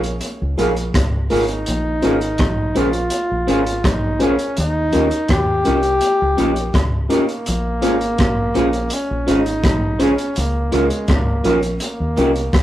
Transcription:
Already playing: A#1 C#4
0.03 closed hi-hat
0.21 closed hi-hat
0.42 C#2
0.58 A#1 A#3 D#4 F4 G#4 A#4 C#5, closed hi-hat
0.77 closed hi-hat
0.94 C#2, kick, cross-stick, closed hi-hat
1.30 G#1 A#3 D#4 F4 G#4 A#4 C#5, open hi-hat
1.48 closed hi-hat
1.66 A#1, closed hi-hat
2.02 G#1 A#3 C#4 F4 G#4 C5 C#5, closed hi-hat
2.21 closed hi-hat
2.38 A#1, kick, cross-stick, closed hi-hat
2.75 A#1 A#3 C#4 F4 G#4 C5 C#5, closed hi-hat
2.93 G#4 C5, closed hi-hat
3.10 closed hi-hat
3.31 A#1
3.47 G#1 A#3 C#4 F4 G#4 C5 C#5, closed hi-hat
3.67 closed hi-hat
3.84 A#1 D#4, kick, cross-stick, closed hi-hat
4.19 A#3 C#4 F4 G#4 C5 C#5, closed hi-hat
4.39 closed hi-hat
4.57 D#2 D#4, closed hi-hat
4.92 D#2 A#3 C#4 D#4 F4 G4 A#4 C#5, closed hi-hat
5.11 closed hi-hat
5.29 D#2 G4, kick, cross-stick, closed hi-hat
5.64 C2 A#3 C#4 D#4 F4 G4 A#4 C#5, closed hi-hat
5.83 closed hi-hat
6.01 closed hi-hat
6.22 C#2
6.37 A#1 A#3 C#4 D#4 F4 G4 A#4 C#5, closed hi-hat
6.56 closed hi-hat
6.74 C#2, kick, cross-stick, closed hi-hat
7.09 A#3 C#4 D#4 F4 G4 A#4 C#5, closed hi-hat
7.29 closed hi-hat
7.46 A#1, closed hi-hat
7.82 G#1 C#4 F4 G#4 C5 C#5, closed hi-hat
8.01 closed hi-hat
8.18 A#1, kick, cross-stick, closed hi-hat
8.54 A#1 C#4 F4 G#4 C5 C#5, closed hi-hat
8.73 G#4 C5, closed hi-hat
8.90 C#4, closed hi-hat
9.11 A#1
9.27 G#1 C#4 D#4 F4 G#4 C5 C#5, closed hi-hat
9.46 closed hi-hat
9.64 A#1, kick, cross-stick, closed hi-hat
9.99 C#4 F4 G#4 C5 C#5, closed hi-hat
10.04 C#4
10.18 closed hi-hat
10.36 C#2 A#3, closed hi-hat
10.72 C#2 G#3 C#4 D#4 F4 G#4 A#4 C#5, closed hi-hat
10.90 closed hi-hat
11.08 C#2 A#3, kick, cross-stick, closed hi-hat
11.44 A#1 C#4 D#4 F4 G#4 A#4 C#5, closed hi-hat
11.63 G#4 A#4, closed hi-hat
11.80 A#3, closed hi-hat
12.00 D#2
12.17 C2 A#3 C#4 D#4 F4 G4 A#4 C#5, closed hi-hat
12.36 closed hi-hat
12.53 C#2, kick, cross-stick, closed hi-hat

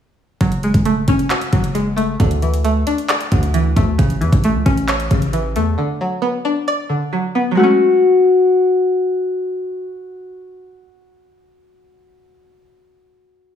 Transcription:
0.41 F#1 F#3, kick, closed hi-hat
0.52 closed hi-hat
0.63 G#3, closed hi-hat
0.74 F#1, kick, closed hi-hat
0.85 A3, closed hi-hat
1.08 F#1 C#4, kick, closed hi-hat
1.19 closed hi-hat
1.30 F#4, clap, closed hi-hat
1.41 closed hi-hat
1.52 F#1 F#3, kick, closed hi-hat
1.64 closed hi-hat
1.75 G#3, closed hi-hat
1.96 A3, closed hi-hat
2.20 D2 D3, kick, closed hi-hat
2.31 closed hi-hat
2.42 E3, closed hi-hat
2.54 closed hi-hat
2.64 A3, closed hi-hat
2.87 D4, closed hi-hat
2.98 closed hi-hat
3.09 D5, clap, closed hi-hat
3.21 closed hi-hat
3.32 D2 D3, kick, closed hi-hat
3.43 closed hi-hat
3.54 E3, closed hi-hat
3.76 D2 A3, kick, closed hi-hat
3.98 A1 C#3, kick, closed hi-hat
4.10 closed hi-hat
4.21 E2 E3, closed hi-hat
4.32 A1, kick, closed hi-hat
4.44 A3, closed hi-hat
4.55 C#2
4.66 A1 C#4, kick, closed hi-hat
4.77 closed hi-hat
4.88 C#5, clap, closed hi-hat
5.00 closed hi-hat
5.11 A1 C#3, kick, closed hi-hat
5.22 closed hi-hat
5.33 E3, closed hi-hat
5.56 E2 A3, closed hi-hat
5.78 D3
6.01 F#3
6.22 B3
6.45 D4
6.68 D5
6.89 D3
7.13 F#3
7.35 B3
7.51 F#3 G#3
7.57 A3 F#4
7.63 C#4

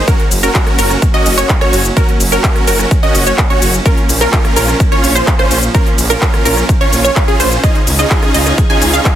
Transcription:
Already playing: A#3 C#4
0.08 F#3 C#4 F#4 A#4, kick, closed hi-hat, shaker
0.20 closed hi-hat
0.31 F#1, open hi-hat, ride, shaker
0.43 C#4 F#4 A#4, closed hi-hat, shaker
0.55 kick, clap, closed hi-hat, shaker
0.67 cross-stick, closed hi-hat
0.79 F#1 C#4 F#4 A#4, open hi-hat, ride, shaker
0.90 cross-stick, closed hi-hat, shaker
1.02 kick, closed hi-hat, shaker
1.14 C#4 F#4 D#5, closed hi-hat
1.26 F#1, open hi-hat, ride, shaker
1.38 C#4 F#4 C#5, shaker
1.49 kick, clap, closed hi-hat, shaker
1.61 C#4 F#4 C#5, cross-stick, closed hi-hat
1.73 F#1, open hi-hat, ride, shaker
1.85 closed hi-hat, shaker
1.97 C#4 F#4 A#4, kick, closed hi-hat, shaker
2.09 closed hi-hat
2.20 F#1, open hi-hat, ride, shaker
2.32 C#4 F#4 A#4, closed hi-hat, shaker
2.44 kick, clap, closed hi-hat, shaker
2.56 cross-stick, closed hi-hat
2.68 F#1 C#4 F#4 A#4, open hi-hat, ride, shaker
2.79 cross-stick, closed hi-hat, shaker
2.91 kick, closed hi-hat, shaker
3.03 C#4 F#4 D#5, closed hi-hat
3.15 F#1, open hi-hat, ride, shaker
3.27 C#4 F#4 C#5, closed hi-hat, shaker
3.38 kick, clap, closed hi-hat, shaker
3.50 C#4 F#4 C#5, closed hi-hat
3.62 F#1, open hi-hat, ride, shaker
3.74 closed hi-hat, shaker
3.86 F3 C#4 F4 A#4, kick, closed hi-hat, shaker
3.97 closed hi-hat
4.09 A#1, open hi-hat, ride, shaker
4.21 C#4 F4 A#4, shaker
4.33 kick, clap, closed hi-hat, shaker
4.45 cross-stick, closed hi-hat
4.56 A#1 C#4 F4 A#4, open hi-hat, ride, shaker
4.68 cross-stick, closed hi-hat, shaker
4.80 kick, closed hi-hat, shaker
4.92 C#4 F4 C#5, closed hi-hat
5.04 A#1, open hi-hat, ride, shaker
5.15 C#4 F4 C5, closed hi-hat, shaker
5.27 kick, clap, closed hi-hat, shaker
5.39 C#4 F4 C5, cross-stick, closed hi-hat
5.51 A#1, open hi-hat, ride, shaker
5.63 closed hi-hat, shaker
5.75 C#4 F4 A#4, kick, closed hi-hat, shaker
5.86 closed hi-hat
5.98 A#1, open hi-hat, ride, shaker
6.10 C#4 F4 A#4, closed hi-hat, shaker
6.22 kick, clap, closed hi-hat, shaker
6.34 cross-stick, closed hi-hat
6.45 A#1 C#4 F4 A#4, open hi-hat, ride, shaker
6.57 cross-stick, shaker
6.69 kick, closed hi-hat, shaker
6.81 C#4 F4 C#5, closed hi-hat
6.93 A#1, open hi-hat, ride, shaker
7.04 C#4 F4 C#5, closed hi-hat, shaker
7.16 kick, clap, closed hi-hat, shaker
7.28 C#4 F4 G#4, closed hi-hat
7.40 A#1 C#4 F4 C5, open hi-hat, ride, shaker
7.52 closed hi-hat, shaker
7.63 C#3 C#4 D#4 F4 G#4 D#5, kick, closed hi-hat, shaker
7.75 closed hi-hat
7.87 C#2, open hi-hat, ride, shaker
7.99 C#4 D#4 F4 G#4 D#5, shaker
8.11 kick, clap, closed hi-hat, shaker
8.23 cross-stick, closed hi-hat
8.34 C#2 C#4 D#4 F4 G#4 D#5, open hi-hat, ride, shaker
8.46 cross-stick, closed hi-hat, shaker
8.58 kick, closed hi-hat, shaker
8.70 C#4 D#4 F4 G#4 G#5, closed hi-hat
8.82 C#2, open hi-hat, ride, shaker
8.93 C#4 D#4 F4 G#4 F5, closed hi-hat, shaker
9.05 kick, clap, closed hi-hat, shaker

